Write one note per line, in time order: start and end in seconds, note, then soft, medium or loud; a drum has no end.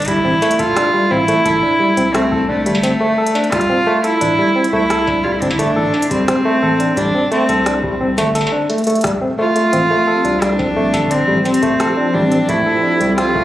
0.00 0.19 G1 loud
0.00 closed hi-hat soft
0.05 0.19 G3 medium
0.05 0.60 E4 loud
0.05 kick medium
0.05 closed hi-hat soft
0.08 closed hi-hat medium
0.25 0.39 A1 medium
0.25 0.31 C4 medium
0.42 0.53 A3 loud
0.42 closed hi-hat soft
0.42 struck metal soft
0.51 closed hi-hat medium
0.59 1.12 F4 loud
0.59 0.76 A4 medium
0.59 kick medium
0.59 closed hi-hat medium
0.76 0.88 D4 medium
0.76 cross-stick loud
0.76 closed hi-hat medium
0.94 1.05 G3 medium
1.11 1.39 A1 medium
1.11 1.18 C4 medium
1.11 2.16 E4 loud
1.28 1.39 A3 loud
1.28 closed hi-hat medium
1.45 1.60 A1 loud
1.45 1.62 A4 medium
1.45 kick medium
1.45 closed hi-hat medium
1.63 1.74 D4 medium
1.80 1.91 G3 medium
1.97 2.68 C2 medium
1.97 2.04 C4 medium
1.97 closed hi-hat medium
2.14 2.26 A3 loud
2.14 2.48 C4 loud
2.14 cross-stick loud
2.14 closed hi-hat medium
2.32 2.48 A4 medium
2.32 kick loud
2.49 3.54 A3 loud
2.49 2.60 D4 medium
2.66 2.94 G1 medium
2.66 2.77 G3 medium
2.66 closed hi-hat medium
2.75 struck metal medium
2.83 2.90 C4 medium
2.83 closed hi-hat medium
2.83 struck metal medium
3.01 3.12 A3 loud
3.18 3.34 A4 medium
3.27 closed hi-hat medium
3.35 3.46 D4 medium
3.35 closed hi-hat soft
3.35 struck metal medium
3.44 closed hi-hat soft
3.52 3.64 G3 medium
3.52 4.03 F4 loud
3.52 kick loud
3.52 cross-stick loud
3.52 closed hi-hat medium
3.61 closed hi-hat soft
3.69 3.76 C4 medium
3.87 3.98 A3 loud
4.04 4.69 E4 loud
4.04 4.20 A4 medium
4.04 closed hi-hat medium
4.21 4.35 A1 loud
4.21 4.32 D4 medium
4.21 closed hi-hat medium
4.38 4.50 G3 medium
4.56 4.62 C4 medium
4.64 closed hi-hat medium
4.73 5.43 C2 medium
4.73 4.84 A3 loud
4.73 5.24 E4 loud
4.90 5.07 A4 medium
4.90 cross-stick loud
4.90 closed hi-hat medium
5.07 5.19 D4 medium
5.07 kick loud
5.07 struck metal soft
5.23 5.36 G3 medium
5.23 5.33 F4 medium
5.32 5.42 E4 medium
5.41 5.70 G1 loud
5.41 5.49 C4 medium
5.41 5.52 D4 medium
5.41 kick medium
5.41 closed hi-hat medium
5.50 5.61 E4 medium
5.50 struck metal medium
5.59 5.70 A3 loud
5.59 6.11 D4 loud
5.59 closed hi-hat medium
5.76 5.91 A1 medium
5.76 5.93 A4 medium
5.94 6.05 D4 medium
5.94 struck metal soft
6.02 closed hi-hat medium
6.11 6.22 G3 medium
6.11 6.99 C4 loud
6.11 kick medium
6.11 closed hi-hat medium
6.28 6.35 C4 medium
6.28 cross-stick loud
6.28 closed hi-hat medium
6.45 6.57 A3 loud
6.63 6.91 A1 medium
6.63 6.79 A4 medium
6.80 6.91 D4 medium
6.80 closed hi-hat medium
6.97 7.11 A1 loud
6.97 7.08 G3 medium
6.97 7.31 D4 loud
6.97 kick medium
6.97 closed hi-hat medium
7.15 7.21 C4 medium
7.32 7.43 A3 loud
7.32 7.97 C4 medium
7.32 closed hi-hat soft
7.49 8.19 C2 medium
7.49 7.65 A4 medium
7.49 closed hi-hat soft
7.66 7.77 D4 medium
7.66 cross-stick loud
7.66 closed hi-hat medium
7.83 7.95 G3 medium
7.83 kick loud
8.01 8.07 C4 medium
8.18 8.46 G1 medium
8.18 8.29 A3 loud
8.18 closed hi-hat medium
8.18 struck metal medium
8.35 8.51 A4 medium
8.35 closed hi-hat medium
8.35 struck metal soft
8.41 struck metal soft
8.47 struck metal medium
8.52 8.64 D4 medium
8.70 8.81 A3 medium
8.70 closed hi-hat soft
8.78 closed hi-hat soft
8.84 8.98 A3 medium
8.84 closed hi-hat soft
8.87 closed hi-hat soft
8.90 closed hi-hat soft
8.95 closed hi-hat soft
9.01 9.11 G3 medium
9.01 cross-stick loud
9.01 closed hi-hat soft
9.04 kick loud
9.04 closed hi-hat medium
9.07 closed hi-hat medium
9.21 9.28 C4 medium
9.38 9.50 A3 medium
9.38 10.44 F4 loud
9.56 9.72 A3 medium
9.56 closed hi-hat medium
9.73 9.87 A1 loud
9.73 13.44 F3 medium
9.73 9.80 C4 medium
9.73 closed hi-hat medium
9.90 10.02 A3 medium
9.95 13.44 C4 medium
10.07 13.44 G4 medium
10.07 10.24 A4 medium
10.25 10.95 C2 medium
10.25 10.36 D4 medium
10.25 closed hi-hat soft
10.30 13.44 A4 medium
10.42 10.53 G3 medium
10.42 11.12 D4 loud
10.42 cross-stick loud
10.42 closed hi-hat medium
10.59 10.66 C4 medium
10.59 kick loud
10.59 struck metal soft
10.76 10.88 A3 loud
10.93 11.22 G1 loud
10.93 11.10 A4 medium
10.93 kick medium
10.93 closed hi-hat medium
10.93 struck metal medium
11.11 11.45 C4 loud
11.11 11.22 D4 medium
11.11 closed hi-hat medium
11.28 11.42 A1 medium
11.28 11.39 G3 medium
11.45 11.52 C4 medium
11.45 12.16 C4 loud
11.45 closed hi-hat soft
11.45 struck metal soft
11.54 closed hi-hat medium
11.62 11.74 A3 loud
11.62 kick medium
11.62 closed hi-hat soft
11.80 11.96 A4 medium
11.80 cross-stick loud
11.80 closed hi-hat medium
11.97 12.08 D4 medium
12.14 12.43 A1 medium
12.14 12.26 G3 medium
12.14 12.50 D4 loud
12.32 12.38 C4 medium
12.32 closed hi-hat soft
12.49 12.63 A1 loud
12.49 12.60 A3 loud
12.49 13.17 E4 loud
12.49 kick medium
12.49 closed hi-hat medium
12.66 12.82 A4 medium
12.83 12.95 D4 medium
13.01 13.44 C2 medium
13.01 13.12 G3 medium
13.01 closed hi-hat soft
13.18 13.25 C4 medium
13.18 13.44 F4 loud
13.18 cross-stick loud
13.18 closed hi-hat medium
13.35 13.44 A3 loud
13.35 kick loud